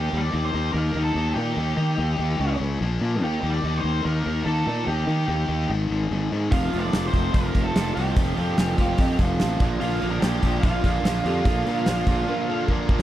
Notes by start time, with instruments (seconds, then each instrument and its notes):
Already playing: overdriven electric guitar D#3 A#3 D#4, lead electric guitar G4
0.13 fingered electric bass D#2, overdriven electric guitar D#3 A#3 D#4
0.17 lead electric guitar D5
0.33 fingered electric bass D#2, overdriven electric guitar D#3 A#3 D#4
0.45 lead electric guitar C5
0.54 fingered electric bass D#2, overdriven electric guitar D#3 A#3 D#4
0.73 fingered electric bass D#2, overdriven electric guitar D#3 A#3 D#4, lead electric guitar A#4
0.95 fingered electric bass D#2, overdriven electric guitar D#3 A#3 D#4
1.04 lead electric guitar A4
1.15 fingered electric bass D#2, overdriven electric guitar D#3 A#3 D#4
1.33 fingered electric bass A#2, overdriven electric guitar D#3 A#3 D#4, lead electric guitar G4
1.57 fingered electric bass D#2, overdriven electric guitar D#3 A#3 D#4
1.77 overdriven electric guitar D#3 A#3 D#4, fingered electric bass D#3
1.97 fingered electric bass D#2, overdriven electric guitar D#3 A#3 D#4
2.18 fingered electric bass D#2, overdriven electric guitar D#3 A#3 D#4
2.40 fingered electric bass C#2, overdriven electric guitar C#3 G#3 C#4
2.60 fingered electric bass C#2, overdriven electric guitar C#3 G#3 C#4
2.81 fingered electric bass A#1, overdriven electric guitar A#2 F3 A#3
3.01 fingered electric bass A#2, overdriven electric guitar A#2 F3 A#3
3.22 fingered electric bass D#2, overdriven electric guitar D#3 A#3 D#4, lead electric guitar G4
3.43 fingered electric bass D#2, overdriven electric guitar D#3 A#3 D#4
3.50 lead electric guitar D5
3.64 fingered electric bass D#2, overdriven electric guitar D#3 A#3 D#4
3.77 lead electric guitar C5
3.84 fingered electric bass D#2, overdriven electric guitar D#3 A#3 D#4
4.05 fingered electric bass D#2, overdriven electric guitar D#3 A#3 D#4, lead electric guitar A#4
4.26 fingered electric bass D#2, overdriven electric guitar D#3 A#3 D#4
4.45 fingered electric bass D#2, overdriven electric guitar D#3 A#3 D#4, lead electric guitar A4
4.67 fingered electric bass A#2, overdriven electric guitar D#3 A#3 D#4
4.87 fingered electric bass D#2, overdriven electric guitar D#3 A#3 D#4, lead electric guitar G4
5.07 fingered electric bass D#3, overdriven electric guitar D#3 A#3 D#4
5.28 fingered electric bass D#2, overdriven electric guitar D#3 A#3 D#4, lead electric guitar G4
5.49 fingered electric bass D#2, overdriven electric guitar D#3 A#3 D#4
5.69 fingered electric bass G#1, overdriven electric guitar G#2 D#3 G#3
5.91 fingered electric bass G#1, overdriven electric guitar G#2 D#3 G#3
6.11 fingered electric bass G#1, overdriven electric guitar G#2 D#3 G#3
6.32 overdriven electric guitar G#2 D#3 G#3, fingered electric bass G#2
6.50 fingered electric bass F1, overdriven electric guitar F2 C3 F3 A#3 C4 F4, lead electric guitar F4, kick, open hi-hat
6.71 fingered electric bass F1, overdriven electric guitar F2 C3 F3 A#3 C4 F4, open hi-hat
6.79 lead electric guitar D5
6.91 fingered electric bass F1, overdriven electric guitar F2 C3 F3 A#3 C4 F4, snare, open hi-hat
7.07 lead electric guitar C5
7.13 fingered electric bass F1, overdriven electric guitar F2 C3 F3 A#3 C4 F4, kick, open hi-hat
7.33 fingered electric bass F1, overdriven electric guitar F2 C3 F3 A#3 C4 F4, lead electric guitar A#4, kick, open hi-hat
7.53 fingered electric bass F1, overdriven electric guitar F2 C3 F3 A#3 C4 F4, kick, open hi-hat
7.64 lead electric guitar A4
7.73 fingered electric bass F1, overdriven electric guitar F2 C3 F3 A#3 C4 F4, snare, open hi-hat
7.94 fingered electric bass C2, overdriven electric guitar F2 C3 F3 A#3 C4 F4, lead electric guitar G4, open hi-hat
8.15 fingered electric bass F1, overdriven electric guitar F2 C3 F3 A#3 C4 F4, kick, open hi-hat
8.35 overdriven electric guitar F2 C3 F3 A#3 C4 F4, fingered electric bass F2, open hi-hat
8.56 fingered electric bass F1, overdriven electric guitar F2 C3 F3 A#3 C4 F4, electric slide guitar G#5, snare, open hi-hat
8.77 fingered electric bass F1, overdriven electric guitar F2 C3 F3 A#3 C4 F4, electric slide guitar F5, kick, open hi-hat
8.98 overdriven electric guitar F2 C3 F3 A#3 C4 F4, fingered electric bass F2, electric slide guitar D#5, kick, open hi-hat
9.17 fingered electric bass F1, overdriven electric guitar F2 C3 F3 A#3 C4 F4, kick, open hi-hat
9.22 electric slide guitar F5
9.39 fingered electric bass A1, overdriven electric guitar F2 C3 F3 A#3 C4 F4, snare, open hi-hat
9.59 fingered electric bass A#1, overdriven electric guitar A#2 D3 F3 A#3 D4 F4, kick, open hi-hat
9.79 fingered electric bass A#1, overdriven electric guitar A#2 D3 F3 A#3 D4 F4, lead electric guitar F4, open hi-hat
10.00 fingered electric bass A#1, overdriven electric guitar A#2 D3 F3 A#3 D4 F4, open hi-hat
10.10 lead electric guitar A#4
10.21 fingered electric bass A#1, overdriven electric guitar A#2 D3 F3 A#3 D4 F4, lead electric guitar G4, snare, open hi-hat
10.41 fingered electric bass A#1, overdriven electric guitar A#2 D3 F3 A#3 D4 F4, kick, open hi-hat
10.61 fingered electric bass A#1, overdriven electric guitar A#2 D3 F3 A#3 D4 F4, lead electric guitar F4, kick, open hi-hat
10.82 fingered electric bass A#1, overdriven electric guitar A#2 D3 F3 A#3 D4 F4, kick, open hi-hat
11.03 fingered electric bass A#1, overdriven electric guitar A#2 D3 F3 A#3 D4 F4, snare, open hi-hat
11.24 fingered electric bass F2, overdriven electric guitar A#2 D3 F3 A#3 D4 F4, electric slide guitar G4, open hi-hat
11.44 fingered electric bass A#1, overdriven electric guitar A#2 D3 F3 A#3 D4 F4, electric slide guitar A4, kick, open hi-hat
11.65 overdriven electric guitar A#2 D3 F3 A#3 D4 F4, fingered electric bass A#2, electric slide guitar A#4, open hi-hat
11.86 fingered electric bass A#1, overdriven electric guitar A#2 D3 F3 A#3 D4 F4, electric slide guitar C5, snare, open hi-hat
12.06 fingered electric bass A#1, overdriven electric guitar A#2 D3 F3 A#3 D4 F4, kick, open hi-hat
12.27 overdriven electric guitar A#2 D3 F3 A#3 D4 F4, electric slide guitar A#4
12.47 overdriven electric guitar A#2 D3 F3 A#3 D4 F4, electric slide guitar A4
12.68 overdriven electric guitar A#2 D3 F3 A#3 D4 F4, electric slide guitar A#4, kick
12.89 overdriven electric guitar A#2 D3 F3 A#3 D4 F4, kick
12.99 snare